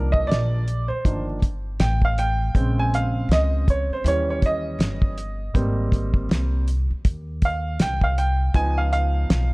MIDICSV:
0, 0, Header, 1, 5, 480
1, 0, Start_track
1, 0, Tempo, 750000
1, 1629, Time_signature, 4, 2, 24, 8
1, 6104, End_track
2, 0, Start_track
2, 0, Title_t, "Upright piano"
2, 0, Program_c, 0, 0
2, 0, Note_on_c, 0, 51, 53
2, 0, Note_on_c, 0, 53, 53
2, 0, Note_on_c, 0, 58, 53
2, 0, Note_on_c, 0, 62, 59
2, 77, Note_on_c, 0, 75, 90
2, 174, Note_on_c, 0, 74, 95
2, 184, Note_off_c, 0, 75, 0
2, 397, Note_off_c, 0, 51, 0
2, 400, Note_off_c, 0, 53, 0
2, 401, Note_off_c, 0, 58, 0
2, 402, Note_off_c, 0, 62, 0
2, 541, Note_off_c, 0, 74, 0
2, 565, Note_on_c, 0, 72, 73
2, 670, Note_on_c, 0, 53, 42
2, 671, Note_on_c, 0, 51, 49
2, 673, Note_on_c, 0, 62, 55
2, 674, Note_on_c, 0, 58, 47
2, 793, Note_off_c, 0, 72, 0
2, 886, Note_off_c, 0, 51, 0
2, 886, Note_off_c, 0, 53, 0
2, 887, Note_off_c, 0, 62, 0
2, 888, Note_off_c, 0, 58, 0
2, 1156, Note_on_c, 0, 79, 90
2, 1288, Note_off_c, 0, 79, 0
2, 1310, Note_on_c, 0, 77, 92
2, 1400, Note_off_c, 0, 77, 0
2, 1400, Note_on_c, 0, 79, 103
2, 1634, Note_on_c, 0, 49, 54
2, 1634, Note_on_c, 0, 56, 48
2, 1638, Note_on_c, 0, 60, 64
2, 1788, Note_on_c, 0, 80, 90
2, 1791, Note_off_c, 0, 79, 0
2, 1879, Note_off_c, 0, 80, 0
2, 1886, Note_on_c, 0, 77, 88
2, 2102, Note_off_c, 0, 77, 0
2, 2128, Note_on_c, 0, 75, 85
2, 2343, Note_off_c, 0, 75, 0
2, 2368, Note_on_c, 0, 73, 83
2, 2508, Note_off_c, 0, 73, 0
2, 2515, Note_on_c, 0, 72, 77
2, 2566, Note_off_c, 0, 49, 0
2, 2566, Note_off_c, 0, 56, 0
2, 2568, Note_off_c, 0, 60, 0
2, 2590, Note_on_c, 0, 52, 53
2, 2594, Note_off_c, 0, 72, 0
2, 2597, Note_on_c, 0, 55, 53
2, 2597, Note_on_c, 0, 61, 62
2, 2610, Note_on_c, 0, 73, 85
2, 2744, Note_off_c, 0, 73, 0
2, 2754, Note_on_c, 0, 73, 80
2, 2841, Note_off_c, 0, 73, 0
2, 2853, Note_on_c, 0, 75, 88
2, 3284, Note_off_c, 0, 52, 0
2, 3287, Note_off_c, 0, 55, 0
2, 3287, Note_off_c, 0, 61, 0
2, 3547, Note_on_c, 0, 55, 56
2, 3550, Note_on_c, 0, 58, 50
2, 3554, Note_on_c, 0, 60, 60
2, 4016, Note_off_c, 0, 75, 0
2, 4242, Note_off_c, 0, 55, 0
2, 4244, Note_off_c, 0, 58, 0
2, 4246, Note_off_c, 0, 60, 0
2, 4769, Note_on_c, 0, 77, 87
2, 5002, Note_on_c, 0, 79, 91
2, 5006, Note_off_c, 0, 77, 0
2, 5143, Note_on_c, 0, 77, 87
2, 5145, Note_off_c, 0, 79, 0
2, 5236, Note_off_c, 0, 77, 0
2, 5236, Note_on_c, 0, 79, 89
2, 5456, Note_off_c, 0, 79, 0
2, 5466, Note_on_c, 0, 53, 55
2, 5467, Note_on_c, 0, 59, 51
2, 5470, Note_on_c, 0, 63, 63
2, 5475, Note_on_c, 0, 80, 104
2, 5617, Note_on_c, 0, 77, 89
2, 5622, Note_off_c, 0, 80, 0
2, 5703, Note_off_c, 0, 77, 0
2, 5713, Note_on_c, 0, 77, 95
2, 6071, Note_off_c, 0, 77, 0
2, 6104, Note_off_c, 0, 53, 0
2, 6104, Note_off_c, 0, 59, 0
2, 6104, Note_off_c, 0, 63, 0
2, 6104, End_track
3, 0, Start_track
3, 0, Title_t, "Upright bass"
3, 0, Program_c, 1, 32
3, 0, Note_on_c, 1, 36, 100
3, 164, Note_off_c, 1, 36, 0
3, 186, Note_on_c, 1, 34, 91
3, 554, Note_off_c, 1, 34, 0
3, 672, Note_on_c, 1, 31, 84
3, 1127, Note_off_c, 1, 31, 0
3, 1149, Note_on_c, 1, 33, 92
3, 1605, Note_off_c, 1, 33, 0
3, 1631, Note_on_c, 1, 34, 102
3, 2086, Note_off_c, 1, 34, 0
3, 2104, Note_on_c, 1, 37, 88
3, 2473, Note_off_c, 1, 37, 0
3, 2587, Note_on_c, 1, 39, 99
3, 3044, Note_off_c, 1, 39, 0
3, 3064, Note_on_c, 1, 31, 87
3, 3522, Note_off_c, 1, 31, 0
3, 3550, Note_on_c, 1, 32, 94
3, 4006, Note_off_c, 1, 32, 0
3, 4027, Note_on_c, 1, 36, 84
3, 4394, Note_off_c, 1, 36, 0
3, 4511, Note_on_c, 1, 39, 84
3, 4966, Note_off_c, 1, 39, 0
3, 4990, Note_on_c, 1, 36, 96
3, 5446, Note_off_c, 1, 36, 0
3, 5467, Note_on_c, 1, 37, 102
3, 5924, Note_off_c, 1, 37, 0
3, 5951, Note_on_c, 1, 35, 87
3, 6104, Note_off_c, 1, 35, 0
3, 6104, End_track
4, 0, Start_track
4, 0, Title_t, "Muted upright bass strokes"
4, 576, Note_on_c, 9, 29, 47
4, 640, Note_off_c, 9, 29, 0
4, 2494, Note_on_c, 9, 29, 47
4, 2558, Note_off_c, 9, 29, 0
4, 4419, Note_on_c, 9, 29, 49
4, 4483, Note_off_c, 9, 29, 0
4, 6104, End_track
5, 0, Start_track
5, 0, Title_t, "Drums"
5, 88, Note_on_c, 9, 36, 90
5, 152, Note_off_c, 9, 36, 0
5, 202, Note_on_c, 9, 38, 108
5, 202, Note_on_c, 9, 42, 91
5, 266, Note_off_c, 9, 38, 0
5, 266, Note_off_c, 9, 42, 0
5, 433, Note_on_c, 9, 42, 63
5, 497, Note_off_c, 9, 42, 0
5, 672, Note_on_c, 9, 36, 95
5, 675, Note_on_c, 9, 42, 87
5, 736, Note_off_c, 9, 36, 0
5, 739, Note_off_c, 9, 42, 0
5, 911, Note_on_c, 9, 36, 81
5, 912, Note_on_c, 9, 42, 73
5, 975, Note_off_c, 9, 36, 0
5, 976, Note_off_c, 9, 42, 0
5, 1150, Note_on_c, 9, 42, 96
5, 1152, Note_on_c, 9, 38, 111
5, 1214, Note_off_c, 9, 42, 0
5, 1216, Note_off_c, 9, 38, 0
5, 1291, Note_on_c, 9, 36, 88
5, 1355, Note_off_c, 9, 36, 0
5, 1394, Note_on_c, 9, 42, 75
5, 1458, Note_off_c, 9, 42, 0
5, 1631, Note_on_c, 9, 36, 109
5, 1635, Note_on_c, 9, 42, 77
5, 1695, Note_off_c, 9, 36, 0
5, 1699, Note_off_c, 9, 42, 0
5, 1881, Note_on_c, 9, 42, 75
5, 1945, Note_off_c, 9, 42, 0
5, 2122, Note_on_c, 9, 42, 91
5, 2123, Note_on_c, 9, 38, 106
5, 2186, Note_off_c, 9, 42, 0
5, 2187, Note_off_c, 9, 38, 0
5, 2355, Note_on_c, 9, 36, 96
5, 2356, Note_on_c, 9, 42, 67
5, 2419, Note_off_c, 9, 36, 0
5, 2420, Note_off_c, 9, 42, 0
5, 2597, Note_on_c, 9, 42, 92
5, 2661, Note_off_c, 9, 42, 0
5, 2831, Note_on_c, 9, 42, 75
5, 2832, Note_on_c, 9, 36, 83
5, 2895, Note_off_c, 9, 42, 0
5, 2896, Note_off_c, 9, 36, 0
5, 3074, Note_on_c, 9, 42, 91
5, 3076, Note_on_c, 9, 38, 104
5, 3138, Note_off_c, 9, 42, 0
5, 3140, Note_off_c, 9, 38, 0
5, 3211, Note_on_c, 9, 36, 88
5, 3275, Note_off_c, 9, 36, 0
5, 3313, Note_on_c, 9, 42, 72
5, 3377, Note_off_c, 9, 42, 0
5, 3551, Note_on_c, 9, 36, 107
5, 3555, Note_on_c, 9, 42, 75
5, 3615, Note_off_c, 9, 36, 0
5, 3619, Note_off_c, 9, 42, 0
5, 3789, Note_on_c, 9, 36, 83
5, 3798, Note_on_c, 9, 42, 73
5, 3853, Note_off_c, 9, 36, 0
5, 3862, Note_off_c, 9, 42, 0
5, 3928, Note_on_c, 9, 36, 90
5, 3992, Note_off_c, 9, 36, 0
5, 4040, Note_on_c, 9, 42, 89
5, 4041, Note_on_c, 9, 38, 107
5, 4104, Note_off_c, 9, 42, 0
5, 4105, Note_off_c, 9, 38, 0
5, 4273, Note_on_c, 9, 42, 63
5, 4337, Note_off_c, 9, 42, 0
5, 4511, Note_on_c, 9, 42, 88
5, 4512, Note_on_c, 9, 36, 93
5, 4575, Note_off_c, 9, 42, 0
5, 4576, Note_off_c, 9, 36, 0
5, 4748, Note_on_c, 9, 42, 72
5, 4750, Note_on_c, 9, 36, 85
5, 4812, Note_off_c, 9, 42, 0
5, 4814, Note_off_c, 9, 36, 0
5, 4989, Note_on_c, 9, 42, 94
5, 4991, Note_on_c, 9, 38, 100
5, 5053, Note_off_c, 9, 42, 0
5, 5055, Note_off_c, 9, 38, 0
5, 5129, Note_on_c, 9, 36, 94
5, 5193, Note_off_c, 9, 36, 0
5, 5235, Note_on_c, 9, 42, 77
5, 5299, Note_off_c, 9, 42, 0
5, 5468, Note_on_c, 9, 36, 111
5, 5468, Note_on_c, 9, 42, 80
5, 5532, Note_off_c, 9, 36, 0
5, 5532, Note_off_c, 9, 42, 0
5, 5713, Note_on_c, 9, 42, 73
5, 5777, Note_off_c, 9, 42, 0
5, 5953, Note_on_c, 9, 38, 113
5, 5953, Note_on_c, 9, 42, 89
5, 6017, Note_off_c, 9, 38, 0
5, 6017, Note_off_c, 9, 42, 0
5, 6104, End_track
0, 0, End_of_file